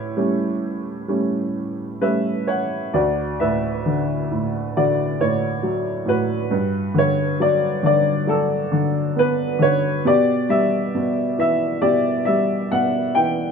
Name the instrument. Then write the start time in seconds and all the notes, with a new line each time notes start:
upright piano
Already playing: A2 E4 G4 C#5
0.17 G3 A3 C#4
1.08 G3 A3 C#4
2.01 G3 A3 C#4 B4 E5
2.47 C#5 F#5
2.94 D2 F#4 D5
3.40 A2 B4 E5
3.86 D3
4.31 A2
4.77 D3 F#4 D5
5.20 A2 C#5
5.63 F#3
6.05 A2 F#4 B4
6.51 G2
6.94 D3
6.98 C#5
7.40 F#3 D5
7.83 D3 D5
8.27 F#3 F#4 A4
8.72 D3
9.16 B3 B4
9.59 D3 C#5
10.05 B2 G4 D5
10.49 G3 E5
10.95 B2
11.38 E3 E5
11.82 B2 G4 D5
12.25 G3 E5
12.72 B2 F#5
13.15 E3 G5